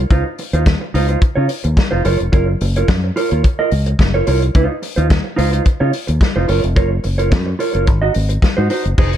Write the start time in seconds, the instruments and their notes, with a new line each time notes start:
0.10 fingered electric bass C#2, clean electric guitar D#4 F4 C5, kick, closed hi-hat
0.26 muted clean electric guitar stroke
0.38 muted clean electric guitar stroke, open hi-hat
0.53 fingered electric bass D#2, clean electric guitar D#4 F4 C5, closed hi-hat
0.66 muted clean electric guitar stroke, kick, snare, closed hi-hat
0.81 muted clean electric guitar stroke
0.94 fingered electric bass C#2, clean electric guitar D#4 F4 C5, open hi-hat
1.09 clean electric guitar D#4 F4 C5, closed hi-hat
1.22 muted clean electric guitar stroke, muted fingered electric bass stroke, kick, closed hi-hat
1.36 fingered electric bass C#3, clean electric guitar D#4 F4 C#5
1.49 muted clean electric guitar stroke, open hi-hat
1.64 fingered electric bass D#2, muted clean electric guitar stroke, closed hi-hat
1.77 muted clean electric guitar stroke, kick, snare, closed hi-hat
1.91 fingered electric bass F1, clean electric guitar D#4 F4 C5
2.05 fingered electric bass F#1, clean electric guitar F4 A#4 C#5, open hi-hat
2.19 fingered electric bass F1, muted clean electric guitar stroke, closed hi-hat
2.32 fingered electric bass F#1, clean electric guitar F4 A#4 C#5, kick, closed hi-hat
2.48 muted clean electric guitar stroke
2.61 fingered electric bass F#1, muted clean electric guitar stroke, open hi-hat
2.76 clean electric guitar F4 A#4 C#5, closed hi-hat
2.88 fingered electric bass F#2, kick, snare, closed hi-hat
3.04 muted clean electric guitar stroke
3.16 clean electric guitar F4 A#4 C#5, open hi-hat
3.31 fingered electric bass D#2, clean electric guitar F4 A#4 C#5, closed hi-hat
3.44 muted clean electric guitar stroke, kick, closed hi-hat
3.59 clean electric guitar F4 A#4 D#5
3.71 fingered electric bass C#2, muted clean electric guitar stroke, open hi-hat
3.86 muted clean electric guitar stroke, closed hi-hat
3.99 fingered electric bass F#1, muted clean electric guitar stroke, kick, snare, closed hi-hat
4.14 clean electric guitar F4 A#4 C#5
4.27 fingered electric bass C2, clean electric guitar F4 A#4 C#5, open hi-hat
4.42 muted clean electric guitar stroke, closed hi-hat
4.55 fingered electric bass C#2, clean electric guitar D#4 F4 C5, kick, closed hi-hat
4.69 muted clean electric guitar stroke
4.82 muted clean electric guitar stroke, open hi-hat
4.96 fingered electric bass D#2, clean electric guitar D#4 F4 C5, closed hi-hat
5.10 muted clean electric guitar stroke, kick, snare, closed hi-hat
5.24 muted clean electric guitar stroke
5.36 fingered electric bass C#2, clean electric guitar D#4 F4 C5, open hi-hat
5.51 clean electric guitar D#4 F4 C5, closed hi-hat
5.65 muted clean electric guitar stroke, muted fingered electric bass stroke, kick, closed hi-hat
5.80 fingered electric bass C#3, clean electric guitar D#4 F4 C#5
5.93 muted clean electric guitar stroke, open hi-hat
6.07 fingered electric bass D#2, muted clean electric guitar stroke, closed hi-hat
6.21 muted clean electric guitar stroke, kick, snare, closed hi-hat
6.36 fingered electric bass F1, clean electric guitar D#4 F4 C5
6.48 fingered electric bass F#1, clean electric guitar F4 A#4 C#5, open hi-hat
6.63 fingered electric bass F1, muted clean electric guitar stroke, closed hi-hat
6.76 fingered electric bass F#1, clean electric guitar F4 A#4 C#5, kick, closed hi-hat
6.90 muted clean electric guitar stroke
7.04 fingered electric bass F#1, muted clean electric guitar stroke, open hi-hat
7.18 clean electric guitar F4 A#4 C#5, closed hi-hat
7.31 fingered electric bass F#2, muted clean electric guitar stroke, kick, snare, closed hi-hat
7.46 muted clean electric guitar stroke
7.59 clean electric guitar F4 A#4 C#5, open hi-hat
7.73 fingered electric bass F#1, clean electric guitar F4 A#4 C#5, closed hi-hat
7.87 fingered electric bass G#1, muted clean electric guitar stroke, kick, closed hi-hat
8.02 clean electric guitar D#4 F#4 D#5
8.14 fingered electric bass G#1, muted clean electric guitar stroke, open hi-hat
8.29 muted clean electric guitar stroke, closed hi-hat
8.42 muted clean electric guitar stroke, kick, snare, closed hi-hat
8.57 fingered electric bass G#2, clean electric guitar D#4 F#4 C5
8.70 clean electric guitar D#4 F#4 C5, open hi-hat
8.85 fingered electric bass F#1, muted clean electric guitar stroke, closed hi-hat
8.98 fingered electric bass F1, clean electric guitar D#4 G#4 C5, kick, crash
9.13 muted clean electric guitar stroke, closed hi-hat